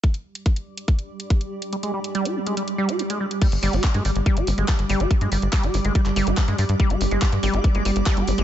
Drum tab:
CC |----------------|----------------|x---------------|----------------|
HH |xx-xxx-xxx-xxx-x|xx-xxx-xxx-xxx-x|xxoxxxoxxxoxxxox|xxoxxxoxxxoxxxox|
CP |----------------|----------------|----x-------x---|----x----x--x---|
BD |o---o---o---o---|----------------|o---o---o---o---|o---o---o---o---|

CC |----------------|
HH |xxoxxxoxxxoxxxox|
CP |----x-------x---|
BD |o---o---o---o---|